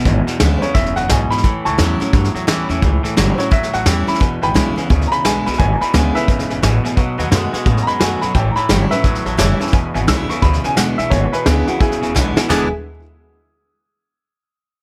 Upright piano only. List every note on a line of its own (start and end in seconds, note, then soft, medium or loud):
0.00 0.25 E5 loud
0.57 0.60 C5 medium
0.62 0.75 C#5 medium
0.74 0.96 E5 loud
0.96 1.09 F#5 loud
1.09 1.31 G#5 medium
1.30 1.64 B5 medium
1.65 1.98 A5 loud
1.65 2.00 C#6 loud
3.34 3.36 C5 medium
3.39 3.51 C#5 loud
3.52 3.73 E5 loud
3.74 3.86 F#5 loud
4.08 4.42 B5 medium
4.43 4.75 G5 loud
4.43 4.77 B5 loud
5.07 5.09 A#5 medium
5.12 5.24 B5 loud
5.25 5.46 G#5 loud
5.46 5.59 B5 medium
5.58 5.80 G#5 loud
5.77 5.79 A#5 medium
5.81 5.94 B5 medium
5.94 6.15 G#5 medium
6.15 6.80 B4 medium
6.15 6.82 E5 loud
7.82 7.85 A#5 medium
7.87 8.00 B5 loud
8.00 8.21 G#5 medium
8.21 8.34 B5 medium
8.34 8.56 G5 loud
8.51 8.53 A#5 medium
8.56 8.69 B5 loud
8.69 8.91 G5 medium
8.90 9.56 B4 medium
8.90 9.58 E5 loud
10.08 10.29 E6 loud
10.30 10.42 C#6 loud
10.42 10.63 B5 loud
10.65 10.77 G#5 loud
10.77 10.98 F#5 medium
10.98 11.11 E5 medium
11.10 11.32 C#5 loud
11.33 11.45 B4 medium
11.46 11.67 G#4 medium
11.67 11.80 F#4 medium
11.80 12.12 E4 loud
11.80 12.14 G#4 loud
12.50 12.70 G#4 loud